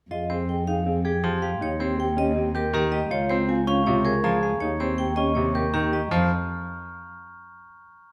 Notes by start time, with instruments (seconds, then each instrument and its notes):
0.11 cello F2, clean electric guitar F4, french horn G#4, vibraphone D#5
0.30 grand piano C4, french horn G#4, vibraphone C5
0.49 french horn G#4, vibraphone G5
0.67 clean electric guitar D#4, french horn G#4, vibraphone F5
0.86 clean electric guitar C4, french horn G#4
1.05 clean electric guitar G4, french horn G#4, vibraphone G#4, glockenspiel G#6
1.24 grand piano F3, vibraphone G4, french horn G#4, glockenspiel C6
1.42 clean electric guitar G4, vibraphone F5
1.61 cello D#2, clean electric guitar D#4, french horn G4, vibraphone C#5
1.80 grand piano C4, french horn G4, vibraphone C5
1.98 french horn G4, vibraphone G5
2.17 clean electric guitar C#4, french horn G4, vibraphone D#5
2.36 clean electric guitar C4, french horn G4
2.55 french horn G4, clean electric guitar G4, vibraphone A#4, glockenspiel G6
2.73 grand piano D#3, french horn G4, vibraphone G4, glockenspiel A#5
2.92 clean electric guitar G4, vibraphone D#5
3.11 cello C#2, clean electric guitar F4, french horn F4, vibraphone C#5
3.30 grand piano C4, french horn F4, vibraphone C5
3.48 clean electric guitar C4, french horn F4, vibraphone G#5
3.67 clean electric guitar C#4, french horn F4, vibraphone F5, glockenspiel C#6
3.86 grand piano C3, clean electric guitar C4, french horn F4, vibraphone C#5
4.05 french horn F4, clean electric guitar G#4, vibraphone A#4, glockenspiel G#6
4.23 grand piano F3, french horn F4, clean electric guitar F4, vibraphone G#4, glockenspiel A#5
4.43 clean electric guitar G#4, vibraphone F5
4.60 cello D#2, clean electric guitar D#4, french horn G4, vibraphone C#5
4.80 grand piano C4, french horn G4, vibraphone C5
4.98 clean electric guitar C4, french horn G4, vibraphone G5
5.16 clean electric guitar C#4, french horn G4, vibraphone D#5, glockenspiel C#6
5.35 grand piano C3, clean electric guitar C4, french horn G4, vibraphone C#5
5.55 french horn G4, clean electric guitar G4, vibraphone A#4, glockenspiel G6
5.74 grand piano D#3, clean electric guitar D#4, french horn G4, vibraphone G4, glockenspiel A#5
5.93 clean electric guitar G4, vibraphone D#5
6.11 cello F2, grand piano F3, clean electric guitar F4, vibraphone C5, glockenspiel F6